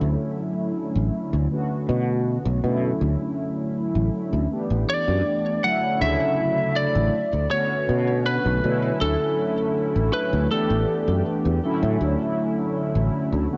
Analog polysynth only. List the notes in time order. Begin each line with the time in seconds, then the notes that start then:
Already playing: D3 F#3 A3 C#4 E4
1.50 D3 A3 B3 C#4 F#4
2.63 D3 F#3 A3 C#4 E4
4.50 E3 A3 B3 D4 G4
5.63 D3 F#3 A3 C#4 E4
6.00 C#3 D3 F#3 A3 E4
7.50 D3 A3 B3 C#4 F#4
8.62 D3 F#3 A3 C#4 E4
10.50 E3 A3 B3 D4 G4
11.62 D3 F#3 A3 C#4 E4
13.49 D3 A3 B3 C#4 F#4